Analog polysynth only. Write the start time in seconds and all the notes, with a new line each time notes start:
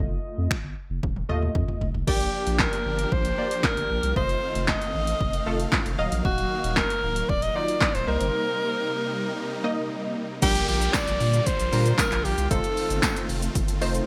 Already playing: A3 F4 D#5
1.29 A3 F4 D#5
2.07 A#3 G4 D5
3.38 A#3 G4 D5
4.16 A3 F4 D#5
5.46 A3 F4 A4
5.98 F#3 D#5 F5
7.55 F#3 D#4 F4
8.07 A#3 D#4 C5
9.64 A#3 D#4 D#5
10.42 G3 D4 F4 A#4
11.72 G3 D4 F4 A#4
12.51 A3 D#4 F4 C5
13.81 A3 D#4 F4 C5